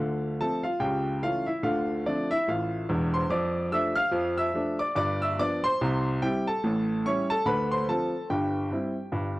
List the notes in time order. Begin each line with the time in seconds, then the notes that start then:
Already playing: D2 D3 F4 F5
0.40 F3 A3 C4 A4 A5
0.63 F4 F5
0.80 C#2 C#3 G4 G5
1.23 E3 A3 C#4 F4 F5
1.46 E4 E5
1.63 D2 D3 F4 F5
2.06 F3 A3 C4 D4 D5
2.31 E4 E5
2.48 A1 A2 F4 F5
2.89 E1 E2
3.14 C5 C6
3.30 F2 F3 D5 D6
3.72 F3 A3 D4 E5 E6
3.95 F5 F6
4.11 F2 F3
4.37 E5 E6
4.54 F3 A3 D4
4.79 D5 D6
4.95 G1 G2 D5 D6
5.22 E5 E6
5.38 F3 B3 D4 D5 D6
5.64 C5 C6
5.81 C2 C3
6.21 G3 C4 E4 G4 G5
6.47 A4 A5
6.64 A1 A2
7.06 G3 C#4 E4 C#5 C#6
7.30 A4 A5
7.45 D2 D3 B4 B5
7.72 C5 C6
7.89 F3 C4 F4 A4 A5
8.30 G1 G2 G4 G5
8.71 G3 C4 E4
9.12 G1 G2